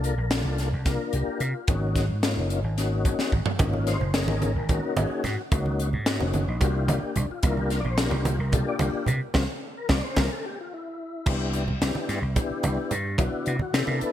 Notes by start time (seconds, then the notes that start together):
Already playing: C2 A#3 D4 F4 A4
0.04 A#4, closed hi-hat
0.18 A#1
0.31 A#3 D4 F4 A4, snare, closed hi-hat
0.45 C2
0.58 snare, closed hi-hat
0.73 C2
0.85 A#3 D4 F4 A#4, kick, snare, closed hi-hat
1.13 C2 G4, closed hi-hat
1.40 C3 F4, closed hi-hat
1.68 G#1 A#3 C#4 D#4 F#4, kick, closed hi-hat
1.96 kick, snare, closed hi-hat
2.09 G#2
2.22 A#3 C#4 D#4 F4, snare, closed hi-hat
2.37 F#1
2.50 closed hi-hat
2.64 G#1
2.77 A#3 C#4 D#4 F#4, snare, closed hi-hat
3.05 G#1, kick, closed hi-hat
3.18 muted slap bass stroke, snare
3.32 G#1, kick
3.46 muted slap bass stroke, floor tom
3.59 G#1 A#3 C#4 D#4 F4, kick, closed hi-hat, muted conga
3.73 high conga
3.87 C5, snare, closed hi-hat
4.00 F#1, low conga
4.14 A#3 C#4 D#4 G#4 A#4, snare, closed hi-hat
4.27 G#1, muted conga, low conga
4.42 closed hi-hat, high conga
4.55 G#1
4.69 A#3 C#4 D#4 F#4, kick, closed hi-hat, low conga
4.97 G#1 G#4, closed hi-hat, muted conga, high conga
5.24 G#2 F#4, snare, closed hi-hat, low conga
5.52 C#2 A#3 C#4 D#4 F#4, kick, closed hi-hat, muted conga
5.66 high conga
5.80 closed hi-hat
5.93 G#2, low conga
6.06 A#3 C#4 D#4 F#4, snare, closed hi-hat
6.21 F#1 C4, muted conga, low conga
6.34 C#4, closed hi-hat, high conga
6.48 A#1 D#4
6.61 C2 A#3 D4 F4 F#4 G4, kick, closed hi-hat, low conga
6.76 E4
6.88 C2 F4, closed hi-hat, muted conga, high conga
7.03 A#3, muted slap bass stroke
7.16 C2 D4, closed hi-hat, low conga
7.30 F4, muted slap bass stroke
7.43 C2 A#3 D4 E4 F4 A#4, kick, closed hi-hat, muted conga
7.57 G4, high conga
7.70 A#4, snare, closed hi-hat
7.80 D5
7.85 A#1, low conga
7.90 C5
7.98 A#3 D4 F4 G4 A#4, snare, closed hi-hat
8.11 C2 D4, muted conga, low conga
8.25 F4, closed hi-hat, high conga
8.39 C2 A#4
8.52 A#3 D4 F4 G4 A4, kick, closed hi-hat, low conga
8.69 D5
8.79 C2, closed hi-hat, muted conga
9.06 C3, closed hi-hat, low conga
9.34 C2 A#3 C4 F4, kick, snare, muted conga
9.77 A#4
9.89 C2 A#3 C4 F4 D5, kick, snare, muted conga
10.04 C5
10.16 C2 A#3 C4 F4 A#4, kick, snare, muted conga
10.32 A4
10.46 G4
10.61 F4
10.74 E4
11.26 C2 B3 D4 E4 G4, kick, crash, muted conga
11.53 closed hi-hat
11.68 high conga, low conga
11.82 C2 B3 D4 E4 G4, snare, closed hi-hat, low conga
11.95 muted conga
12.09 G2, snare, closed hi-hat
12.22 C2
12.35 B3 D4 E4 G4, kick, closed hi-hat, low conga
12.50 muted slap bass stroke, low conga
12.63 C2, closed hi-hat, muted conga, high conga, low conga
12.91 G2, closed hi-hat, low conga
13.18 B1 B3 D4 E4 F#4, kick, closed hi-hat, muted conga
13.33 muted slap bass stroke
13.46 C3, closed hi-hat
13.59 F#4, high conga, low conga
13.73 C3 B3 D4 E4 G4 A4, snare, closed hi-hat, low conga
13.87 C3 A#4, muted conga
14.01 B4, muted slap bass stroke, closed hi-hat